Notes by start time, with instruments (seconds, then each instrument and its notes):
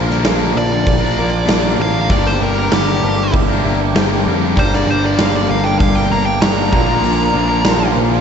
Already playing: picked electric bass A#1, overdriven electric guitar A#2 D3, steel-string acoustic guitar A#3, honky-tonk piano F4 A#4 C5
0.10 overdriven electric guitar A#2 D3, steel-string acoustic guitar F3 A#3 D4 A#4, snare
0.24 picked electric bass A#1, steel-string acoustic guitar A#2 D3 F3 A#3 D4 A#4, honky-tonk piano F4 A#4 F5, snare, open hi-hat
0.40 overdriven electric guitar F3 A#3 D4 A#4
0.55 picked electric bass A#1, steel-string acoustic guitar F3 A#3 D4 A#4, honky-tonk piano F4 A#4 D5, lead electric guitar D5, muted overdriven electric guitar stroke
0.69 steel-string acoustic guitar F3 A#3 D4 A#4, muted overdriven electric guitar stroke
0.86 picked electric bass A#1, honky-tonk piano F4 A#4 D5, kick, open hi-hat
1.00 steel-string acoustic guitar F3 A#3 D4 A#4
1.16 picked electric bass A#1, steel-string acoustic guitar F3 A#3 D4 A#4, honky-tonk piano F4 A#4 D5
1.31 muted overdriven electric guitar stroke
1.47 picked electric bass A#1, steel-string acoustic guitar A#2 D3 F3 A#3 D4 A#4, honky-tonk piano F4 A#4, snare, open hi-hat
1.51 honky-tonk piano D5
1.63 overdriven electric guitar F3 A#3 D4 A#4
1.78 picked electric bass A1, steel-string acoustic guitar F3 A#3 D4 A#4, honky-tonk piano F4 A#4 D5, lead electric guitar F5
1.94 overdriven electric guitar F3 A#3 D4 A#4
2.09 picked electric bass G1, steel-string acoustic guitar G2 D3 G3 A#3 D4 A#4, tonewheel organ D4 G4 A#4 G5, honky-tonk piano G4 A#4 D5, overdriven electric guitar G4, lead electric guitar D5, kick, open hi-hat
2.25 steel-string acoustic guitar G3 A#3 D4 A#4, lead electric guitar C5, snare
2.40 picked electric bass G1, steel-string acoustic guitar G3 A#3 D4 A#4, honky-tonk piano G4 A#4 D5, overdriven electric guitar G4, lead electric guitar A#4
2.55 steel-string acoustic guitar G3 A#3 D4 A#4, overdriven electric guitar G4
2.59 overdriven electric guitar G2 D3
2.70 picked electric bass G1, steel-string acoustic guitar G2 D3 A#3 D4 A#4, overdriven electric guitar G3, honky-tonk piano G4 A#4 D5, lead electric guitar G4, snare, open hi-hat
2.86 steel-string acoustic guitar G3 A#3 D4 A#4, overdriven electric guitar G4
3.00 picked electric bass G1, steel-string acoustic guitar G3 A#3 D4 A#4, honky-tonk piano G4 A#4 C5, muted overdriven electric guitar stroke
3.16 steel-string acoustic guitar G3 A#3 D4 A#4, overdriven electric guitar G4, muted overdriven electric guitar stroke
3.32 picked electric bass G1, honky-tonk piano G4 A#4 E5, kick, open hi-hat
3.47 steel-string acoustic guitar G3 A#3 D4 A#4, overdriven electric guitar G4
3.62 picked electric bass G1, steel-string acoustic guitar G3 A#3 D4 A#4, honky-tonk piano G4 A#4 E5
3.67 overdriven electric guitar G4
3.80 muted overdriven electric guitar stroke
3.94 picked electric bass G1, steel-string acoustic guitar G2 D3 G3 A#3 D4 A#4, honky-tonk piano G4 A#4 C5, overdriven electric guitar G4, snare, open hi-hat
4.09 overdriven electric guitar G3 A#3 D4 G4
4.25 picked electric bass F2, steel-string acoustic guitar G3 A#3 D4 A#4, honky-tonk piano G4 A#4 D5, overdriven electric guitar G4
4.41 overdriven electric guitar A#3 D4 G4 A#4
4.45 overdriven electric guitar G3
4.55 picked electric bass G1, steel-string acoustic guitar G2 D3 G3 A#3 D4 A#4, tonewheel organ D4 G4 A#4, honky-tonk piano G4 A#4 D5, kick, open hi-hat
4.59 overdriven electric guitar G4, lead electric guitar C5, tonewheel organ G5
4.70 steel-string acoustic guitar G3 A#3 D4 A#4, snare
4.74 lead electric guitar D5
4.86 picked electric bass G1, steel-string acoustic guitar G3 A#3 D4 A#4, honky-tonk piano G4 A#4 F5
4.91 overdriven electric guitar G4, lead electric guitar C5
5.03 overdriven electric guitar G2 D3 G4, steel-string acoustic guitar G3 A#3 D4 A#4, lead electric guitar D5
5.18 picked electric bass G1, steel-string acoustic guitar G2 D3 G3 A#3 D4 A#4, honky-tonk piano G4 A#4 D5, lead electric guitar F5, snare, open hi-hat
5.34 steel-string acoustic guitar G3 A#3 D4 A#4, overdriven electric guitar G4, lead electric guitar D5
5.49 picked electric bass G1, steel-string acoustic guitar G3 A#3 D4, honky-tonk piano G4 A#4 D5, lead electric guitar F5, muted overdriven electric guitar stroke
5.53 steel-string acoustic guitar A#4
5.64 steel-string acoustic guitar G3 A#3 D4 A#4, overdriven electric guitar G4, lead electric guitar G5, muted overdriven electric guitar stroke
5.79 picked electric bass G1, honky-tonk piano G4 A#4 F5, lead electric guitar F5, kick, open hi-hat
5.95 steel-string acoustic guitar A#3 A#4, overdriven electric guitar D4 G4, lead electric guitar G5
5.99 steel-string acoustic guitar G3
6.11 picked electric bass G1, steel-string acoustic guitar G3 A#3 D4 A#4, honky-tonk piano G4 A#4 F5, overdriven electric guitar G4, lead electric guitar A#5
6.25 lead electric guitar G5, muted overdriven electric guitar stroke
6.42 picked electric bass G1, steel-string acoustic guitar G2 D3 G3 A#3 D4 A#4, honky-tonk piano G4 A#4 F5, overdriven electric guitar G4, lead electric guitar A#5, snare, open hi-hat
6.56 overdriven electric guitar G3 A#3 D4 G4
6.71 picked electric bass A#1, overdriven electric guitar A#2 D3 F4, steel-string acoustic guitar F3, tonewheel organ D4 F4 A#4 F5, honky-tonk piano F4 A#4 D5, lead electric guitar A#5, kick
6.75 steel-string acoustic guitar A#3 D4 A#4
6.87 overdriven electric guitar A#3 D4 F4 A#4
6.92 overdriven electric guitar F3
7.04 picked electric bass A#1, steel-string acoustic guitar A#2 D3 F3 A#3 D4 A#4, overdriven electric guitar F4, open hi-hat
7.19 steel-string acoustic guitar F3 A#3 D4 A#4
7.32 picked electric bass A#1, overdriven electric guitar D3 A#3 F4, steel-string acoustic guitar F3, honky-tonk piano F4 A#4 D5
7.37 steel-string acoustic guitar D4 A#4
7.47 overdriven electric guitar A#2 D3 F4, steel-string acoustic guitar D4 A#4
7.52 steel-string acoustic guitar F3 A#3
7.64 picked electric bass A#1, steel-string acoustic guitar A#2 D3 F3 A#3 D4 A#4, honky-tonk piano F4 A#4 D5, snare, open hi-hat
7.78 overdriven electric guitar F4, steel-string acoustic guitar A#4
7.83 steel-string acoustic guitar F3 A#3 D4
7.95 picked electric bass A#1, steel-string acoustic guitar F3 A#3 D4 A#4, honky-tonk piano F4 A#4 C5, muted overdriven electric guitar stroke
8.10 overdriven electric guitar F4, steel-string acoustic guitar A#4, muted overdriven electric guitar stroke
8.14 steel-string acoustic guitar F3 A#3 D4